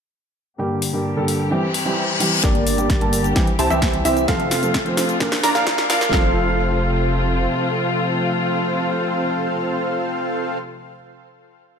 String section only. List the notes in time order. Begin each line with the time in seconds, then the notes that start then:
0.59 D3 G3 A#3 G4
1.51 E3 G3 C4
2.44 D3 G3 A#3 G4
3.36 E3 C4
4.28 C3 F3 A3 F4
5.20 D3 F3 A#3
6.13 C3 F3 A3 F4